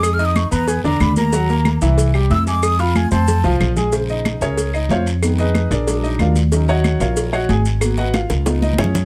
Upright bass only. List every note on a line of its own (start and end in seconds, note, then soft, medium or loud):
0.00 0.47 F2 loud
0.52 0.82 E2 loud
0.84 0.99 E2 medium
1.00 1.76 D#2 loud
1.82 2.27 C2 loud
2.31 3.06 F2 loud
3.12 3.42 F2 loud
3.45 3.59 C2 medium
3.60 4.36 A#1 loud
4.41 4.87 C#2 medium
4.89 5.65 F2 medium
5.71 6.16 A#1 loud
6.19 6.95 D#2 loud
7.00 7.46 A#1 loud
7.49 8.24 G#1 loud
8.30 8.75 C#2 loud
8.78 9.05 F#2 medium